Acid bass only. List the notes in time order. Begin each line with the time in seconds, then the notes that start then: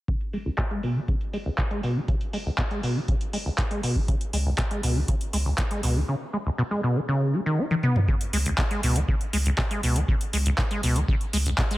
0.08 C#3
0.33 G#3
0.46 C#2
0.58 B2
0.71 G#3
0.83 B2
0.96 E3
1.08 C#3
1.33 G#3
1.46 C#2
1.58 B2
1.71 G#3
1.83 B2
1.96 E3
2.08 C#3
2.33 G#3
2.46 C#2
2.58 B2
2.71 G#3
2.83 B2
2.96 E3
3.08 C#3
3.33 G#3
3.46 C#2
3.58 B2
3.71 G#3
3.83 B2
3.96 E3
4.08 C#3
4.33 G#3
4.46 C#2
4.58 B2
4.71 G#3
4.83 B2
4.96 E3
5.08 C#3
5.33 G#3
5.46 C#2
5.58 B2
5.71 G#3
5.83 B2
5.96 E3
6.08 C#3
6.33 G#3
6.46 C#2
6.58 B2
6.71 G#3
6.83 B2
6.96 E3
7.08 C#3
7.33 G#3
7.46 D#3
7.58 E4
7.71 D#3
7.83 B3
7.96 C#3
8.08 C#3
8.33 G#3
8.46 C#2
8.58 B2
8.71 G#3
8.83 B2
8.96 E3
9.08 C#3
9.33 G#3
9.46 C#2
9.58 B2
9.71 G#3
9.83 B2
9.96 E3
10.08 C#3
10.33 G#3
10.46 C#2
10.58 B2
10.71 G#3
10.83 B2
10.96 E3
11.08 C#3
11.33 G#3
11.46 C#2
11.58 B2
11.71 G#3